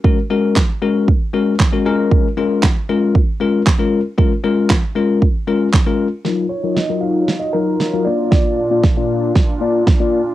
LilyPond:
<<
  \new Staff \with { instrumentName = "Grand piano" } { \time 4/4 \key cis \mixolydian \tempo 4 = 116 r1 | r1 | r1 | r8 cis''8 dis''8 eis''8. dis''16 ais'4 d''8 |
d''4 r2. | }
  \new Staff \with { instrumentName = "Tine electric piano" } { \time 4/4 \key cis \mixolydian <gis cis' fis' ais'>16 r16 <gis cis' fis' ais'>8 r8 <gis cis' fis' ais'>8 r8 <gis cis' fis' ais'>8 r16 <gis cis' fis' ais'>16 <gis cis' eis' ais'>8~ | <gis cis' eis' ais'>16 r16 <gis cis' eis' ais'>8 r8 <gis cis' eis' ais'>8 r8 <gis cis' eis' ais'>8 r16 <gis cis' eis' ais'>8 r16 | <gis cis' eis' ais'>16 r16 <gis cis' eis' ais'>8 r8 <gis cis' eis' ais'>8 r8 <gis cis' eis' ais'>8 r16 <gis cis' eis' ais'>8 r16 | <fis dis' eis' ais'>8 r16 <fis dis' eis' ais'>16 r16 <fis dis' eis' ais'>8. r8 <fis dis' eis' ais'>8 r16 <fis dis' eis' ais'>16 <ais d' eis' d''>8~ |
<ais d' eis' d''>8 r16 <ais d' eis' d''>16 r16 <ais d' eis' d''>8. r8 <ais d' eis' d''>8 r16 <ais d' eis' d''>8 r16 | }
  \new Staff \with { instrumentName = "Supersaw synth" } { \time 4/4 \key cis \mixolydian r1 | r1 | r1 | <fis dis' eis'>2.~ <fis dis' eis'>8 <ais, d'>8~ |
<ais, d'>1 | }
  \new DrumStaff \with { instrumentName = "Drums" } \drummode { \time 4/4 bd4 <hc bd sn>4 bd4 <hc bd sn>4 | bd4 <hc bd sn>4 bd4 <hc bd sn>4 | bd4 <hc bd sn>4 bd4 <hc bd sn>4 | sn4 sn4 sn4 sn4 |
<bd sn>4 <bd sn>4 <bd sn>4 <bd sn>4 | }
>>